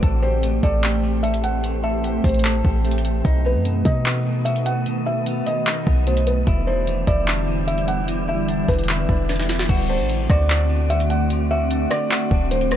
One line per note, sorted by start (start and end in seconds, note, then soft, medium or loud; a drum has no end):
0.00 0.61 A1 loud
0.00 3.22 E3 medium
0.00 6.43 A3 medium
0.00 3.22 A3 medium
0.00 3.21 C4 medium
0.00 3.22 G4 medium
0.00 0.62 A4 loud
0.00 3.22 C5 medium
0.00 kick loud
0.00 closed hi-hat medium
0.22 0.82 G4 medium
0.22 0.61 C5 medium
0.43 1.02 A3 medium
0.43 closed hi-hat medium
0.63 2.20 A1 loud
0.63 1.23 A4 medium
0.63 1.20 D5 medium
0.63 kick medium
0.63 closed hi-hat medium
0.83 2.03 G4 medium
0.83 clap loud
0.83 closed hi-hat medium
1.04 1.62 A3 medium
1.23 1.83 A4 medium
1.23 1.42 E5 medium
1.23 closed hi-hat medium
1.34 closed hi-hat soft
1.44 1.63 F#5 medium
1.44 closed hi-hat medium
1.64 2.23 A3 medium
1.64 closed hi-hat medium
1.84 2.43 A4 medium
1.84 2.22 E5 medium
2.04 2.64 G4 medium
2.04 closed hi-hat medium
2.24 2.63 A1 loud
2.24 2.84 A3 medium
2.24 2.81 C5 medium
2.24 kick loud
2.24 closed hi-hat soft
2.24 open hi-hat medium
2.29 closed hi-hat medium
2.34 closed hi-hat medium
2.39 closed hi-hat medium
2.44 3.25 A4 loud
2.44 clap loud
2.44 closed hi-hat medium
2.65 3.23 A1 loud
2.65 3.24 G4 medium
2.65 kick loud
2.85 3.25 A3 medium
2.85 closed hi-hat soft
2.91 closed hi-hat medium
2.98 closed hi-hat medium
3.05 closed hi-hat medium
3.25 3.57 B1 loud
3.25 6.44 D#3 medium
3.25 9.65 B3 medium
3.25 6.44 B3 medium
3.25 3.84 D#4 loud
3.25 6.44 F#4 medium
3.25 6.44 A4 medium
3.25 6.44 D#6 medium
3.25 kick loud
3.25 closed hi-hat medium
3.45 4.05 B3 medium
3.45 3.83 B4 medium
3.55 3.84 F#2 loud
3.65 4.25 B2 medium
3.65 closed hi-hat medium
3.85 5.42 B2 loud
3.85 5.06 D#4 medium
3.85 4.42 D#5 medium
3.85 kick medium
3.85 closed hi-hat medium
4.06 5.25 B3 medium
4.06 clap loud
4.06 closed hi-hat medium
4.26 4.86 B2 medium
4.45 5.66 F#4 medium
4.45 4.65 E5 medium
4.45 closed hi-hat medium
4.56 closed hi-hat soft
4.66 4.85 F#5 medium
4.66 closed hi-hat medium
4.86 5.45 B2 medium
4.86 closed hi-hat medium
5.06 5.44 E5 medium
5.26 5.85 B3 medium
5.26 closed hi-hat medium
5.46 6.06 B2 medium
5.46 6.03 D#5 medium
5.46 closed hi-hat medium
5.67 6.47 D#4 loud
5.67 clap loud
5.67 closed hi-hat medium
5.86 6.45 B1 loud
5.86 6.47 B3 medium
5.86 kick loud
6.07 6.47 B2 medium
6.07 6.26 C5 medium
6.07 closed hi-hat medium
6.17 closed hi-hat soft
6.27 6.46 B4 medium
6.27 closed hi-hat medium
6.47 7.05 E1 loud
6.47 9.66 D3 medium
6.47 9.66 G3 medium
6.47 9.66 D4 medium
6.47 7.06 E4 loud
6.47 9.66 E4 medium
6.47 9.66 G4 medium
6.47 9.66 E5 medium
6.47 kick loud
6.47 closed hi-hat medium
6.67 7.26 D4 medium
6.67 7.05 C5 medium
6.87 7.46 E3 medium
6.87 closed hi-hat medium
7.07 8.65 E1 loud
7.07 7.67 E4 medium
7.07 7.64 D5 medium
7.07 kick loud
7.07 closed hi-hat medium
7.27 8.48 D4 loud
7.27 clap loud
7.27 closed hi-hat medium
7.47 8.07 E3 medium
7.67 8.27 E4 medium
7.67 7.87 E5 medium
7.67 closed hi-hat medium
7.78 closed hi-hat soft
7.88 8.07 F#5 medium
7.88 closed hi-hat medium
8.08 8.68 E3 medium
8.08 closed hi-hat medium
8.28 8.88 E4 medium
8.28 8.66 E5 medium
8.48 9.08 D4 medium
8.48 closed hi-hat medium
8.68 9.07 E1 loud
8.68 9.28 E3 medium
8.68 9.25 B4 medium
8.68 kick medium
8.68 closed hi-hat soft
8.68 open hi-hat medium
8.74 closed hi-hat soft
8.79 closed hi-hat medium
8.84 closed hi-hat medium
8.89 9.69 E4 loud
8.89 clap loud
8.89 closed hi-hat medium
9.09 9.67 E1 loud
9.09 9.69 D4 medium
9.09 kick medium
9.29 9.70 E3 medium
9.29 snare medium
9.29 closed hi-hat soft
9.36 snare medium
9.36 closed hi-hat medium
9.42 closed hi-hat medium
9.49 snare medium
9.49 closed hi-hat medium
9.59 snare medium
9.69 10.01 D1 loud
9.69 12.77 D3 medium
9.69 12.77 A3 medium
9.69 12.77 C4 medium
9.69 12.77 F#4 medium
9.69 10.29 F#4 loud
9.69 12.77 D5 medium
9.69 kick loud
9.69 closed hi-hat medium
9.69 crash loud
9.89 10.49 D4 medium
9.89 10.27 C5 medium
9.99 10.28 A1 loud
10.10 10.68 D3 medium
10.10 closed hi-hat medium
10.30 11.87 D2 loud
10.30 10.89 F#4 medium
10.30 10.87 D5 medium
10.30 kick loud
10.30 cross-stick loud
10.30 closed hi-hat medium
10.50 11.69 D4 loud
10.50 clap loud
10.50 closed hi-hat medium
10.69 11.29 D3 medium
10.90 11.50 F#4 medium
10.90 11.09 E5 medium
10.90 closed hi-hat medium
11.00 closed hi-hat soft
11.10 11.29 F#5 medium
11.10 closed hi-hat medium
11.30 11.89 D3 medium
11.30 closed hi-hat medium
11.51 12.10 F#4 medium
11.51 11.89 E5 medium
11.70 12.30 D4 medium
11.70 closed hi-hat medium
11.91 12.50 D3 medium
11.91 12.47 D5 medium
11.91 cross-stick loud
11.91 closed hi-hat medium
12.11 12.77 F#4 loud
12.11 clap loud
12.11 closed hi-hat medium
12.31 12.77 D1 loud
12.31 12.77 D4 medium
12.31 kick loud
12.51 12.77 D3 medium
12.51 12.70 C5 medium
12.51 closed hi-hat medium
12.61 closed hi-hat soft
12.71 12.77 B4 medium
12.71 cross-stick medium
12.71 closed hi-hat medium